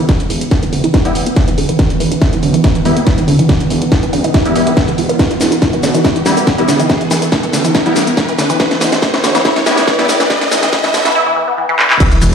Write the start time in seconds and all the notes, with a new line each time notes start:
Already playing: E3 B3, riser
0.09 E3, kick, snare, closed hi-hat
0.20 E3, closed hi-hat
0.30 E1 E3, open hi-hat
0.41 E3, closed hi-hat
0.51 E4, kick, snare, closed hi-hat
0.63 E3, closed hi-hat
0.73 D1 D3, open hi-hat
0.84 E3, closed hi-hat
0.94 E4, kick, snare, closed hi-hat
1.05 E3 G3 B3 E4, closed hi-hat
1.15 D1 E3, open hi-hat
1.26 B3, closed hi-hat
1.36 E3, kick, snare, closed hi-hat
1.48 E3, closed hi-hat
1.58 E1 D3, open hi-hat
1.69 E3, closed hi-hat
1.79 E3, kick, snare, closed hi-hat
1.90 E3, closed hi-hat
2.00 E1 E3, open hi-hat
2.12 E3, closed hi-hat
2.22 E4, kick, snare, closed hi-hat
2.33 E3, closed hi-hat
2.43 B1 D3, open hi-hat
2.54 E3, closed hi-hat
2.64 E4, kick, snare, closed hi-hat
2.75 E3, closed hi-hat
2.85 E1 E3 G3 B3 E4, open hi-hat
2.97 B3, closed hi-hat
3.07 E3, kick, snare, closed hi-hat
3.18 E3, closed hi-hat
3.28 E1 D3, open hi-hat
3.39 E3, closed hi-hat
3.49 E3, kick, snare, closed hi-hat
3.60 E3, closed hi-hat
3.70 E1 E3, open hi-hat
3.82 E3, closed hi-hat
3.92 E4, kick, snare, closed hi-hat
4.03 E3, closed hi-hat
4.13 D1 D3, open hi-hat
4.24 E3, closed hi-hat
4.34 E4, kick, snare, closed hi-hat
4.45 E3 G3 B3 E4, closed hi-hat
4.55 D1 E3 G3 B3 E4, open hi-hat
4.67 E3, closed hi-hat
4.77 B3, kick, snare, closed hi-hat
4.88 D3, closed hi-hat
4.98 E1 F3, open hi-hat
5.09 B3, closed hi-hat
5.19 E3, kick, snare, closed hi-hat, shaker
5.31 E3, closed hi-hat
5.41 E1 E3, snare, open hi-hat, shaker
5.52 E3, closed hi-hat, shaker
5.62 E4, kick, snare, closed hi-hat, shaker
5.73 E3, closed hi-hat
5.83 B1 D3, snare, open hi-hat, shaker
5.94 E3, closed hi-hat, shaker
6.04 E4, kick, snare, closed hi-hat, shaker
6.16 E3, closed hi-hat
6.26 E1 E3 G3 B3 E4, snare, open hi-hat, shaker
6.37 B3, closed hi-hat, shaker
6.47 E3, kick, snare, closed hi-hat, shaker
6.58 E3 G3 B3 E4, closed hi-hat
6.68 E1 D3, snare, open hi-hat, shaker
6.80 E3, closed hi-hat, shaker
6.90 E3, kick, snare, closed hi-hat, shaker
7.01 E3, closed hi-hat
7.11 E1 E3, snare, open hi-hat, shaker
7.22 E3, closed hi-hat, shaker
7.32 E4, kick, snare, closed hi-hat, shaker
7.43 E3, closed hi-hat
7.53 D1 D3, snare, open hi-hat, shaker
7.65 E3, closed hi-hat, shaker
7.75 E4, kick, snare, closed hi-hat, shaker
7.86 E3 G3 B3 E4, closed hi-hat
7.96 D1 E3, snare, open hi-hat, shaker
8.07 B3, closed hi-hat, shaker
8.17 E3, kick, snare, closed hi-hat, shaker
8.28 E3, closed hi-hat
8.39 E1 D3, snare, open hi-hat, shaker
8.50 E3, closed hi-hat, shaker
8.60 E3, kick, snare, closed hi-hat, shaker
8.71 E3, snare, closed hi-hat
8.81 E1 E3, snare, open hi-hat, shaker
8.92 E3, snare, closed hi-hat, shaker
9.02 E4, kick, snare, closed hi-hat, shaker
9.14 E3, snare, closed hi-hat
9.24 B1 D3, snare, open hi-hat, shaker
9.35 E3, snare, closed hi-hat, shaker
9.45 E4, kick, snare, closed hi-hat, shaker
9.56 E3, snare, closed hi-hat
9.66 E1 E3 G3 B3 E4, snare, open hi-hat, shaker
9.78 B3, snare, closed hi-hat, shaker
9.88 E3, kick, snare, closed hi-hat, shaker
9.99 E3 G3 B3 E4, snare, closed hi-hat
10.09 E1 D3, snare, open hi-hat, shaker
10.20 E3, snare, closed hi-hat, shaker
10.30 E3, kick, snare, closed hi-hat, shaker
10.41 E3, snare, closed hi-hat
10.51 E1 E3, snare, open hi-hat, shaker
10.63 E3, snare, closed hi-hat, shaker
10.73 E4, kick, snare, closed hi-hat, shaker
10.84 E3, snare, closed hi-hat
10.94 D1 D3, snare, open hi-hat, shaker
11.05 E3, snare, closed hi-hat, shaker
11.15 E4
11.26 E3
11.36 E3
11.48 B3
11.58 E3
11.69 E3
11.79 D3, clap
11.90 E3, clap
12.00 E3 B3, kick, closed hi-hat, crash, ride, sub drop, shaker
12.12 E3, closed hi-hat, shaker
12.22 E1 E3, open hi-hat, ride, shaker